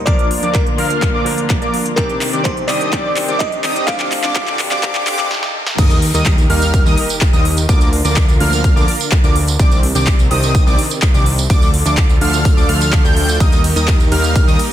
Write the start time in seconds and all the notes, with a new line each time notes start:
Already playing: riser
0.06 D2 D3 F3 A#3 D4 F4 A#4 D5 D6, kick, clap, closed hi-hat
0.19 closed hi-hat
0.31 open hi-hat
0.43 F3 A#3 D4 A#4 D5 D6, closed hi-hat
0.53 A#4, kick, clap, closed hi-hat
0.67 closed hi-hat
0.78 F3 A#3 D4 A#4 F5 F6, open hi-hat
0.90 closed hi-hat
1.02 kick, clap, closed hi-hat
1.14 F3 A#3 D4 A#4 D5 D6
1.25 F3 A#3 D4 A#4, open hi-hat
1.38 closed hi-hat
1.50 kick, clap, closed hi-hat
1.62 F3 A#3 D4 A#4 D5 D6, closed hi-hat
1.74 open hi-hat
1.86 closed hi-hat
1.96 C2 C3 D#3 C4 D4 G4 A#4 D5 D6, kick, clap, closed hi-hat
2.09 closed hi-hat
2.21 clap, open hi-hat
2.33 D#3 C4 D4 G4 D5 D6, closed hi-hat
2.44 C5, kick, clap, closed hi-hat
2.57 closed hi-hat
2.68 D#3 C4 D4 G4 D5 D#5 D#6, clap, open hi-hat
2.81 closed hi-hat
2.92 D#3 C4 D4 G4 D6, kick, clap, closed hi-hat
3.17 clap, open hi-hat
3.28 D#3 C4 D4 G4 D5 D6, closed hi-hat
3.39 D#5, kick, clap, closed hi-hat
3.52 closed hi-hat
3.64 D#3 C4 D4 G4 D#5 D#6, clap, open hi-hat
3.76 closed hi-hat
3.87 D2 A2 D3 F3 C4 D4 G4 F5 D6, kick, clap, closed hi-hat
4.00 clap, closed hi-hat
4.12 clap, open hi-hat
4.24 D3 C4 D4 G4 D5 D6, clap, closed hi-hat
4.34 D3 C4 D4 G4 D6, kick, clap, closed hi-hat
4.47 clap, closed hi-hat
4.59 clap, open hi-hat
4.71 D3 C4 D4 G4 D5 D6, clap, closed hi-hat
4.82 D3 C4 D4 G4 D6, kick, clap, closed hi-hat, swell
4.95 clap
5.06 D3 C4 D4 G4 D5 D6, clap, open hi-hat
5.19 clap, closed hi-hat
5.31 snare
5.43 snare
5.67 snare
5.78 D#2 D#3 G3 A#3 D#4 G4 A#4 D#5 D#6, kick, closed hi-hat, crash, tambourine, sub drop
5.90 closed hi-hat, tambourine
6.02 open hi-hat
6.14 D#2 G3 A#3 D#4 A#4 D#5 D#6, closed hi-hat, tambourine
6.26 kick, clap, closed hi-hat, tambourine
6.38 closed hi-hat, tambourine
6.50 D#2 G3 A#3 D#4 A#4 F5 F6, open hi-hat
6.62 closed hi-hat, tambourine
6.74 kick, closed hi-hat, tambourine
6.86 D#2 G3 A#3 D#4 A#4 D#5 D#6, tambourine
6.97 open hi-hat
7.09 closed hi-hat, tambourine
7.21 kick, clap, closed hi-hat, tambourine
7.33 D#2 G3 A#3 D#4 A#4 D#5 D#6, closed hi-hat, tambourine
7.45 open hi-hat
7.57 closed hi-hat, tambourine
7.69 D2 D3 F3 A#3 D4 F4 A#4 D5 D6, kick, closed hi-hat, tambourine
7.81 closed hi-hat, tambourine
7.93 open hi-hat
8.05 D2 F3 A#3 D4 A#4 D5 D6, closed hi-hat, tambourine
8.16 kick, clap, closed hi-hat, tambourine
8.29 closed hi-hat, tambourine
8.40 D2 F3 A#3 D4 A#4 F5 F6, open hi-hat
8.52 closed hi-hat, tambourine
8.64 kick, closed hi-hat, tambourine
8.76 D2 F3 A#3 D4 A#4 D5 D6, tambourine
8.88 open hi-hat
9.00 closed hi-hat, tambourine
9.12 kick, clap, closed hi-hat, tambourine
9.24 D2 F3 A#3 D4 A#4 D5 D6, closed hi-hat, tambourine
9.36 open hi-hat
9.48 closed hi-hat, tambourine
9.59 C2 C3 D#3 C4 D4 G4 D5 D6, kick, closed hi-hat, tambourine
9.71 closed hi-hat, tambourine
9.83 open hi-hat
9.95 C2 D#3 C4 D4 G4 D5 D6, closed hi-hat, tambourine
10.07 kick, clap, closed hi-hat, tambourine
10.19 closed hi-hat, tambourine
10.31 C2 D#3 C4 D4 G4 D#5 D#6, open hi-hat
10.43 closed hi-hat, tambourine
10.55 kick, closed hi-hat, tambourine
10.67 C2 D#3 C4 D4 G4 D5 D6, tambourine
10.79 open hi-hat
10.90 closed hi-hat, tambourine
11.02 kick, clap, closed hi-hat, tambourine
11.14 C2 D#3 C4 D4 G4 D5 D6, closed hi-hat, tambourine
11.26 open hi-hat
11.38 closed hi-hat, tambourine
11.50 D2 D3 F3 A3 D4 F4 A4 D5 D6, kick, closed hi-hat, tambourine
11.62 closed hi-hat, tambourine
11.74 open hi-hat
11.86 D2 F3 A3 D4 A4 D5 D6, closed hi-hat, tambourine
11.97 kick, clap, closed hi-hat, tambourine
12.09 closed hi-hat, tambourine
12.21 D2 F3 A3 D4 A4 F5 F6, open hi-hat
12.33 closed hi-hat, tambourine
12.45 kick, closed hi-hat, tambourine
12.57 D2 F3 A3 D4 A4 D5 D6, tambourine
12.69 D2 F3 A3 D4 A4 F5 F6, open hi-hat
12.81 closed hi-hat, tambourine
12.93 kick, clap, closed hi-hat, tambourine
13.05 D2 F3 A3 D4 A4 G5 G6, closed hi-hat, tambourine
13.17 open hi-hat
13.29 closed hi-hat, tambourine
13.40 D#2 D#3 G3 A#3 D#4 G4 A#4 D#5 D#6, kick, closed hi-hat, ride, tambourine
13.52 closed hi-hat, tambourine
13.64 open hi-hat, ride
13.76 D#2 G3 A#3 D#4 A#4 D#5 D#6, closed hi-hat, tambourine
13.88 kick, clap, closed hi-hat, ride, tambourine
14.00 closed hi-hat, tambourine
14.12 D#2 G3 A#3 D#4 A#4 F5 F6, open hi-hat, ride
14.24 closed hi-hat, tambourine
14.36 kick, closed hi-hat, ride, tambourine
14.47 D#2 G3 A#3 D#4 A#4 D#5 D#6, tambourine
14.59 open hi-hat, ride